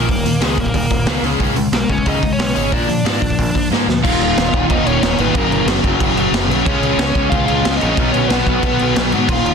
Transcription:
Already playing: A#3 A#4
0.09 D#1 D#2 A#2, kick, open hi-hat
0.24 D#2 A#2, open hi-hat
0.40 C#2 D#2 A#2 D#3 G#3, snare, open hi-hat
0.45 G#4
0.57 D#1 D#2 A#2 A#3, kick, open hi-hat
0.61 A#4
0.66 kick
0.74 D#1 D#2 A#2, kick, open hi-hat
0.90 D#1 D#2 A#2, kick, open hi-hat
1.06 C#2 D#2 A#2 D#3, snare, open hi-hat
1.22 C#2 C#3 G#3 C#4, open hi-hat
1.39 C#2 C#3 G#3 C#4, kick, open hi-hat
1.55 C#2 C#3 G#3, open hi-hat
1.72 B1 C#3 G#3 A#3, snare, open hi-hat
1.78 A#4
1.89 C#2 C#3 G#3 C#4 C#5, kick, open hi-hat
1.98 kick
2.05 C#2 C#3 G#3 C#4 D#4 D#5, kick, open hi-hat
2.22 C#2 C#3 G#3, kick, open hi-hat
2.32 C#4 C#5
2.38 B1 C#3 G#3 C#4 C#5, snare, open hi-hat
2.54 G#1 C#3 G#3 C#4, open hi-hat
2.71 A#1 A#2 F3 A#3 D4 D5, kick, open hi-hat
2.88 A#2 F3, open hi-hat
3.04 G#2 A#2 F3 A#3, snare, open hi-hat
3.21 A#1 A#2 F3, kick, open hi-hat
3.30 kick
3.39 A#1 A#2 F3, kick, open hi-hat
3.54 A#1 A#2 F3, kick, open hi-hat
3.71 G#2 A#2 F3 A#3, snare
3.87 D2 A#2 F3, snare
4.04 D#1 D#2 A#2 D#3 F4 F5, kick, crash
4.19 D#1, crash
4.37 D#1 D#2 A#2 D#3, snare, crash
4.53 D#1 D#2 A#2 D#3, kick, crash
4.69 D#1 D#2 A#2 D#3 D#4 D#5, kick, crash
4.86 D#1 C#4 C#5, crash
5.02 D#1 D#2 A#2 D#3, snare, crash
5.18 G#1 D#2 A#2 D#3 B3 B4, crash
5.35 F#1 F#2 C#3 F#3 A#3 A#4, kick, crash
5.50 F#1, crash
5.66 F#1 F#2 C#3, snare, crash
5.70 F#3
5.84 F#1 C#3 F#3, kick, crash
5.88 F#2
6.00 F#1 F#2 C#3 F#3, kick, crash
6.16 F#1, crash
6.32 F#1 F#2 C#3 F#3, snare, crash
6.48 B1 F#2 C#3 F#3, crash
6.66 C#2 C#3 G#3 C#4 C#5, kick, crash
6.82 C#2, crash
6.97 C#2 C#3 G#3 C#4, snare, crash
7.15 C#2 C#3 G#3 C#4, kick, crash
7.29 C#2 C#3 G#3 C#4 F4 F5, kick, crash
7.46 C#2 F4 F5, crash
7.65 C#2 C#3 G#3 C#4, snare, crash
7.77 C#3 G#3 C#4 D#5
7.81 A#1 D#4, crash
7.97 B1 B2 F#3 B3, kick, crash
8.02 B3
8.11 B1 C#4 C#5, crash
8.28 B1 B2 F#3 B3 B4, snare, crash
8.46 B1 B2 F#3 B3, kick, crash
8.62 B1 B2 F#3 B3, kick, crash
8.79 B1, crash
8.96 B1 B2 F#3 B3, snare, crash
9.12 G#2 B2 F#3 B3, crash
9.29 D#1 D#2 A#2 D#3 F4, kick, crash
9.33 F5
9.45 D#1, crash

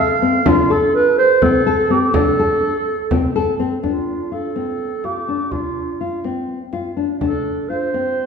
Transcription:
Already playing: A4
0.00 F5
0.22 C4
0.46 D4 F4, frame drum
0.70 A4
0.95 B4, frame drum
1.18 C5
1.42 C4 A4, frame drum
1.67 A4
1.90 C4 G4
2.14 D4 A4, frame drum
2.39 A4
3.11 C4, frame drum
3.36 A4
3.60 C4
3.83 D4 F4, frame drum
4.32 F4 A4
4.56 C4, frame drum
5.04 F4 G4, frame drum
5.28 D4
5.52 D4 F4, frame drum
6.01 F4
6.24 C4, frame drum
6.73 F4, frame drum
6.97 D4
7.21 D4 A4, frame drum
7.69 F4 C5
7.94 C4, frame drum

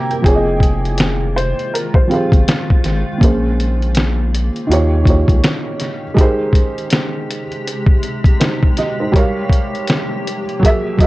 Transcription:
Already playing: C3 A#3 C4 E4 G4 A#4 E5 G5 A#5
0.10 A#4 G5, closed hi-hat
0.22 F1 D#3 F3 G#3 C4 F4 G#4 G5, kick, closed hi-hat
0.27 G#4 C#5
0.35 D#5
0.60 kick, closed hi-hat
0.85 closed hi-hat
0.98 snare, closed hi-hat
1.36 C5, closed hi-hat
1.59 closed hi-hat
1.74 A#4, closed hi-hat
1.94 C5, kick
2.07 F3 C4 G4 F5, closed hi-hat
2.12 G#4 C5
2.32 G1, kick, closed hi-hat
2.48 snare, closed hi-hat
2.70 kick
2.84 G#1, snare, closed hi-hat
3.18 A#1 A#2 C#3 A#3 C#4 G#4, kick
3.23 G#4 C5, closed hi-hat
3.60 closed hi-hat
3.82 closed hi-hat
3.95 snare, closed hi-hat
4.35 closed hi-hat
4.56 closed hi-hat
4.67 D#2 D#3 A#3 C#4 F4 G4
4.72 G4 C#5, closed hi-hat
5.04 D#3 A#3 F4, kick, closed hi-hat
5.09 G4 C#5
5.28 C#2, kick, closed hi-hat
5.44 snare, closed hi-hat
5.80 snare, closed hi-hat
6.14 C3 G#3 D#4 G4, kick
6.18 G#3 A#4 C5, closed hi-hat
6.53 kick, closed hi-hat
6.78 closed hi-hat
6.90 snare, closed hi-hat
7.30 closed hi-hat
7.52 closed hi-hat
7.67 closed hi-hat
7.86 kick
8.03 closed hi-hat
8.24 kick, closed hi-hat
8.40 D#4 C5, snare, closed hi-hat
8.63 kick
8.77 G4 D#5, snare, closed hi-hat
9.00 D#4 C5
9.12 F3 G3 A#3 G4 A#4, kick, closed hi-hat
9.16 C#5 F5
9.50 kick, closed hi-hat
9.75 closed hi-hat
9.88 snare, closed hi-hat
10.27 closed hi-hat
10.49 closed hi-hat
10.59 E3 F#3 F#4 G#4, kick
10.64 A#4 E5, closed hi-hat
10.97 F#3 F#4 G#4 D#5, kick, closed hi-hat
11.02 A#4 E5

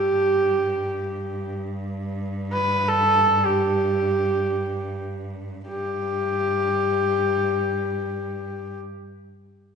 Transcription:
Already playing: G2 G4
0.15 G2
2.53 B4
2.89 A4
3.46 G4
5.68 G2 G4

